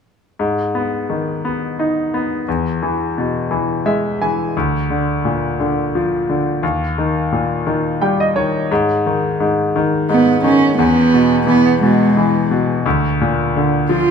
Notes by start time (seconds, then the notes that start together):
0.39 G#2
0.75 B3
1.10 D#3
1.45 B3
1.79 D#4
2.14 B3
2.48 E2
2.83 E3
3.18 B2
3.51 E3
3.86 G#3 E5
4.22 E3 G#5
4.57 D2
4.90 D3
5.25 A#2
5.60 D3
5.95 F3
6.29 D3
6.63 D#2
6.98 D#3
7.32 A#2
7.67 D#3
8.02 G3 G5
8.20 D#5
8.36 D#3 C#5
8.71 G#2
9.06 D#3
9.40 G#2
9.76 D#3
10.09 G#2 B3
10.44 D#3 C#4
10.78 E2 B3
11.14 B2
11.47 E3 B3
11.82 B2 G#3
12.17 E3
12.51 B2
12.86 D2
13.21 A#2
13.56 D3
13.89 F3 F4